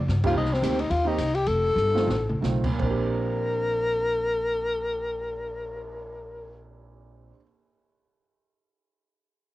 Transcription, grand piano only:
0, 0, Header, 1, 2, 480
1, 0, Start_track
1, 0, Key_signature, -2, "major"
1, 0, Tempo, 275482
1, 605, Time_signature, 4, 2, 24, 8
1, 2544, Tempo, 321716
1, 3984, Tempo, 381194
1, 12952, End_track
2, 0, Start_track
2, 0, Title_t, "Grand piano"
2, 0, Program_c, 0, 0
2, 409, Note_on_c, 0, 55, 64
2, 413, Note_on_c, 0, 51, 67
2, 423, Note_on_c, 0, 58, 59
2, 428, Note_on_c, 0, 67, 77
2, 438, Note_on_c, 0, 60, 56
2, 584, Note_off_c, 0, 55, 0
2, 586, Note_off_c, 0, 51, 0
2, 592, Note_off_c, 0, 58, 0
2, 594, Note_off_c, 0, 67, 0
2, 599, Note_off_c, 0, 60, 0
2, 1072, Note_on_c, 0, 51, 57
2, 1073, Note_on_c, 0, 58, 50
2, 1079, Note_on_c, 0, 60, 54
2, 1098, Note_on_c, 0, 67, 70
2, 1322, Note_off_c, 0, 51, 0
2, 1322, Note_off_c, 0, 58, 0
2, 1325, Note_off_c, 0, 60, 0
2, 1334, Note_off_c, 0, 67, 0
2, 1817, Note_on_c, 0, 51, 65
2, 1830, Note_on_c, 0, 58, 58
2, 1845, Note_on_c, 0, 60, 59
2, 1855, Note_on_c, 0, 67, 70
2, 2009, Note_off_c, 0, 51, 0
2, 2016, Note_off_c, 0, 58, 0
2, 2023, Note_off_c, 0, 60, 0
2, 2029, Note_off_c, 0, 67, 0
2, 3265, Note_on_c, 0, 51, 59
2, 3272, Note_on_c, 0, 57, 57
2, 3275, Note_on_c, 0, 60, 55
2, 3278, Note_on_c, 0, 65, 67
2, 3451, Note_off_c, 0, 51, 0
2, 3454, Note_off_c, 0, 57, 0
2, 3456, Note_off_c, 0, 60, 0
2, 3457, Note_off_c, 0, 65, 0
2, 3962, Note_on_c, 0, 51, 49
2, 3974, Note_on_c, 0, 57, 48
2, 3983, Note_on_c, 0, 60, 45
2, 3991, Note_on_c, 0, 65, 52
2, 4213, Note_off_c, 0, 51, 0
2, 4218, Note_off_c, 0, 57, 0
2, 4222, Note_off_c, 0, 60, 0
2, 4226, Note_off_c, 0, 65, 0
2, 4278, Note_on_c, 0, 46, 58
2, 4350, Note_on_c, 0, 58, 53
2, 4431, Note_on_c, 0, 60, 56
2, 4508, Note_on_c, 0, 62, 47
2, 4587, Note_on_c, 0, 67, 63
2, 10099, Note_off_c, 0, 46, 0
2, 10135, Note_off_c, 0, 58, 0
2, 10176, Note_off_c, 0, 60, 0
2, 10214, Note_off_c, 0, 62, 0
2, 10254, Note_off_c, 0, 67, 0
2, 12952, End_track
0, 0, End_of_file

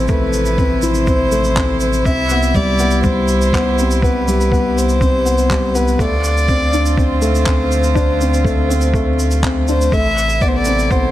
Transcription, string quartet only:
0, 0, Header, 1, 2, 480
1, 0, Start_track
1, 0, Tempo, 491803
1, 89, Time_signature, 4, 2, 24, 8
1, 10847, End_track
2, 0, Start_track
2, 0, Title_t, "String quartet"
2, 0, Program_c, 0, 48
2, 0, Note_on_c, 0, 48, 74
2, 0, Note_on_c, 0, 53, 73
2, 0, Note_on_c, 0, 57, 67
2, 0, Note_on_c, 0, 64, 86
2, 1964, Note_off_c, 0, 53, 0
2, 1967, Note_off_c, 0, 57, 0
2, 2001, Note_on_c, 0, 55, 69
2, 2002, Note_on_c, 0, 67, 67
2, 5804, Note_off_c, 0, 64, 0
2, 5806, Note_off_c, 0, 55, 0
2, 5807, Note_off_c, 0, 67, 0
2, 5808, Note_off_c, 0, 48, 0
2, 5842, Note_on_c, 0, 60, 75
2, 5844, Note_on_c, 0, 50, 74
2, 5844, Note_on_c, 0, 57, 71
2, 5844, Note_on_c, 0, 65, 88
2, 9647, Note_off_c, 0, 60, 0
2, 9648, Note_off_c, 0, 50, 0
2, 9648, Note_off_c, 0, 65, 0
2, 9678, Note_on_c, 0, 69, 68
2, 9684, Note_on_c, 0, 48, 80
2, 9685, Note_on_c, 0, 64, 77
2, 10847, Note_off_c, 0, 48, 0
2, 10847, Note_off_c, 0, 57, 0
2, 10847, Note_off_c, 0, 64, 0
2, 10847, Note_off_c, 0, 69, 0
2, 10847, End_track
0, 0, End_of_file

